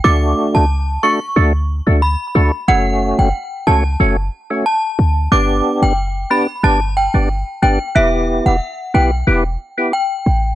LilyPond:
<<
  \new Staff \with { instrumentName = "Synth bell" } { \time 4/4 \key e \dorian \tempo 4 = 91 d'''16 r8 a''16 r8 cis'''16 r4 r16 b''8. r16 | fis''16 r8 g''16 r8 a''16 r4 r16 a''8. r16 | d'''16 r8 g''16 r8 b''16 r16 a''16 r16 g''16 r8. g''16 r16 | e''16 r8 fis''16 r8 g''16 r4 r16 g''8. r16 | }
  \new Staff \with { instrumentName = "Tonewheel organ" } { \time 4/4 \key e \dorian <a d' fis'>4 r8 <a d' fis'>16 r16 <a d' fis'>16 r8 <a d' fis'>16 r8 <a d' fis'>16 r16 | <a cis' fis'>4 r8 <a cis' fis'>16 r16 <a cis' fis'>16 r8 <a cis' fis'>16 r4 | <b d' g'>4 r8 <b d' g'>16 r16 <b d' g'>16 r8 <b d' g'>16 r8 <b d' g'>16 r16 | <b e' g'>4 r8 <b e' g'>16 r16 <b e' g'>16 r8 <b e' g'>16 r4 | }
  \new Staff \with { instrumentName = "808-style bass" } { \clef bass \time 4/4 \key e \dorian d,8 r16 cis,8. r8 d,8. d,8 r16 d,16 r16 | fis,,8. fis,,16 r8 cis,8 fis,,8 r4 d,8 | g,,8 r16 fis,,8. r8 g,,8. g,,8 r16 g,,16 r16 | e,,8. e,,16 r8 b,,8 e,,8 r4 a,,8 | }
>>